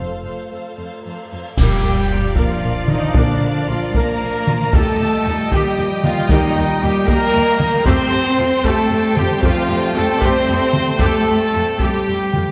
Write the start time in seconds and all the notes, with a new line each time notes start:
Already playing: F1 A3 F4 A4 C5 F5
0.23 F2 A4 C5 F5
0.50 F2 A4 C5 F5
0.77 F2 A4 C5 F5
1.04 F2 A4 C5 F5
1.32 F2 A4 C5 F5
1.56 A#1 F3 G3 A#3 D4 G4 A#4 D5 F5 G5, concert bass drum, taiko, crash
1.84 A#1 A#3 A#4
2.10 A#1 A#3 F4
2.35 A#1 F3 A#3 F4 A#4 F5, taiko
2.62 A#1 A#3 A#4
2.86 A#1 D#3 A#3 D#4 F4 D#5, taiko mid
3.14 A#1 D3 A#3 D4 A#4 D5, taiko
3.41 A#1 A#3 A#4
3.65 A#1 F3 F4 F5
3.70 A#3 F4
3.94 A#1 A#3 A#4 A#5, taiko
4.21 A#1 A#3 A#4
4.47 A#1 A#3 F4, taiko mid
4.71 D#2 A#2 G3 A3 A#3 G4 A4 D#5 G5, taiko
4.75 G5 A5
4.99 D#2 A#3 G4
5.26 D#2 A#3 D#4
5.50 D#2 G3 A#3 G4 G5, taiko
5.78 D#2 A#3 G4
6.02 D#2 F3 A#3 D#4 F4 F5, taiko mid
6.29 D#2 D#3 A#3 D#4 G4 D#5, taiko
6.56 D#2 A#3 G4
6.82 D#2 G3 A#3 D#4 G4 G5
7.08 D#2 A#3 G4 A#4 A#5, taiko
7.33 D#2 A#3 G4
7.60 D#2 A#3 D#4, taiko mid
7.85 F2 G3 A3 C4 G4 C5 G5 A5 C6, taiko
8.12 F2 A3 G4
8.39 F2 A3 F4
8.64 F2 A3 G4 A4 A5, taiko
8.91 F2 A3 G4
9.15 F2 G3 A3 F4 G4 G5, taiko mid
9.42 F2 F3 A3 F4 G4 F5, taiko
9.69 F2 A3 G4
9.95 F2 A3 F4 A4 A5
10.21 F2 A3 C4 G4 C5 C6, taiko
10.49 F2 A3 G4
10.73 F2 A3 F4, taiko mid
10.99 F2 A3 G4 A4 A5, taiko
11.27 F2 A3 G4
11.54 F2 A3 F4
11.79 F2 G3 A3 G4 G5, taiko
12.07 F2 A3 G4
12.33 F2 A3 F4, taiko mid